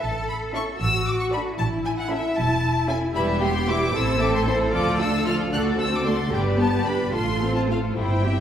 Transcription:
0.01 0.65 A1 medium
0.01 0.79 A4 medium
0.01 0.28 A5 medium
0.28 0.36 B5 medium
0.54 0.74 C#4 medium
0.54 0.74 E4 soft
0.54 0.74 A4 medium
0.54 0.74 E5 soft
0.54 0.63 C#6 medium
0.80 1.43 A1 medium
0.80 1.57 F#4 medium
0.80 1.06 E6 medium
1.07 1.20 D6 medium
1.20 1.25 C#6 medium
1.33 1.53 D4 medium
1.33 1.53 F#4 medium
1.33 1.52 A4 medium
1.33 1.52 D5 medium
1.33 1.41 B5 medium
1.59 2.21 A1 medium
1.59 3.12 E4 medium
1.59 1.67 A5 medium
1.85 1.90 G#5 medium
1.98 2.11 F#5 medium
2.10 2.30 C#4 medium
2.10 2.30 E4 medium
2.10 2.30 A4 medium
2.10 2.30 E5 medium
2.10 2.37 E5 medium
2.37 2.99 E1 medium
2.37 2.89 A5 medium
2.88 3.08 C#4 medium
2.88 3.08 E4 medium
2.88 3.08 A4 medium
2.88 3.08 E5 medium
2.88 2.97 G#5 medium
3.15 3.85 E1 medium
3.15 3.39 G3 medium
3.15 3.39 E4 medium
3.15 3.92 G4 medium
3.15 3.39 B4 soft
3.15 3.40 E5 medium
3.15 3.23 B5 medium
3.41 3.68 B3 soft
3.41 3.67 G4 medium
3.41 3.67 G4 soft
3.41 3.67 G5 soft
3.41 3.68 C6 medium
3.67 3.94 G3 soft
3.67 3.93 E4 soft
3.67 3.94 B4 soft
3.67 3.94 E5 soft
3.67 3.95 D6 medium
3.94 4.64 A1 medium
3.94 4.18 C4 soft
3.94 4.18 E4 soft
3.94 5.51 A4 medium
3.94 4.18 C5 soft
3.94 4.21 E6 medium
4.20 4.46 A3 soft
4.20 4.46 C4 soft
4.20 4.46 A4 soft
4.20 4.46 E5 soft
4.20 4.34 D6 medium
4.35 4.46 C6 medium
4.46 4.73 C4 soft
4.46 4.73 E4 soft
4.46 4.73 C5 soft
4.46 4.55 C6 medium
4.72 5.43 D2 medium
4.72 4.97 F3 medium
4.72 4.97 F4 medium
4.72 4.97 D5 medium
4.72 4.98 D6 medium
4.99 5.25 A3 soft
4.99 5.25 D4 soft
4.99 5.25 A4 soft
4.99 5.25 F5 soft
4.99 5.25 E6 medium
5.25 5.52 F3 soft
5.25 5.52 F4 soft
5.25 5.51 D5 soft
5.25 5.34 F6 medium
5.52 6.23 D2 medium
5.52 5.77 A3 soft
5.52 5.77 D4 soft
5.52 5.77 F#4 soft
5.52 6.30 A4 medium
5.52 5.77 D5 soft
5.52 5.61 F#6 medium
5.78 6.05 C4 soft
5.78 6.05 F#4 soft
5.78 6.05 A4 soft
5.78 6.05 C5 soft
5.78 5.92 E6 medium
5.94 6.06 D6 medium
6.04 6.32 A3 soft
6.04 6.30 D4 soft
6.04 6.31 F#4 soft
6.04 6.30 D5 soft
6.04 6.32 C6 medium
6.31 7.03 G1 medium
6.31 6.56 G3 soft
6.31 6.56 D4 soft
6.31 7.13 G4 medium
6.31 6.56 B4 soft
6.31 6.56 D5 soft
6.31 6.41 G5 medium
6.58 6.85 B3 soft
6.58 6.85 G4 soft
6.58 6.83 B4 soft
6.58 6.84 A5 medium
6.84 7.13 G3 soft
6.84 7.13 D4 soft
6.84 7.12 B4 soft
6.84 7.12 D5 soft
6.84 7.13 B5 medium
7.11 7.86 A1 medium
7.11 7.38 A3 soft
7.11 7.38 F4 soft
7.11 7.96 F4 soft
7.11 7.38 A4 soft
7.11 7.54 C6 medium
7.40 7.68 C4 soft
7.40 7.68 F4 soft
7.40 7.68 A4 soft
7.40 7.68 C5 soft
7.56 7.61 A5 soft
7.68 7.96 A3 soft
7.68 7.96 F4 soft
7.68 7.96 A4 soft
7.68 7.78 F5 soft
7.95 8.40 G1 soft
7.95 8.22 G3 soft
7.95 8.22 E4 soft
7.95 8.40 E4 soft
7.95 8.22 C5 soft
7.95 8.40 G5 medium
8.24 8.40 C4 soft
8.24 8.40 G4 soft
8.24 8.40 E5 soft

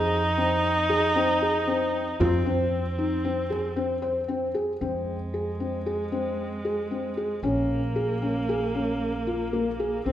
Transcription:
0.00 2.17 F2 medium
0.00 2.22 D#4 loud
0.00 0.20 G#4 medium
0.38 0.72 C4 medium
0.65 frame drum soft
0.89 1.07 G#4 medium
0.89 frame drum soft
1.16 1.33 C4 medium
1.16 frame drum soft
1.42 1.59 G#4 medium
1.67 2.02 C4 medium
2.20 4.78 F2 medium
2.20 4.56 C4 medium
2.20 2.37 F4 medium
2.20 frame drum medium
2.46 2.80 C4 medium
2.46 frame drum soft
2.98 3.16 D#4 medium
3.25 3.42 C4 medium
3.50 3.68 G#4 medium
3.50 frame drum soft
3.76 3.94 C4 medium
4.02 4.20 C5 medium
4.28 4.46 C4 medium
4.55 4.72 G#4 medium
4.55 frame drum soft
4.81 7.40 F2 medium
4.81 7.45 G#3 medium
4.81 5.16 C4 medium
5.34 5.51 G#4 medium
5.60 5.77 C4 medium
5.86 6.04 G#4 medium
6.12 6.46 C4 medium
6.65 6.82 G#4 medium
6.91 7.08 C4 medium
7.17 7.35 G#4 medium
7.43 10.01 A#1 medium
7.43 10.06 A#3 medium
7.43 7.78 C#4 medium
7.96 8.13 G#4 medium
8.22 8.39 C#4 medium
8.49 8.66 G#4 medium
8.74 9.09 C#4 medium
9.27 9.44 F4 medium
9.53 9.70 A#3 medium
9.80 9.97 G#4 medium
10.06 10.12 C2 medium
10.06 10.12 C4 medium
10.06 10.12 C4 loud

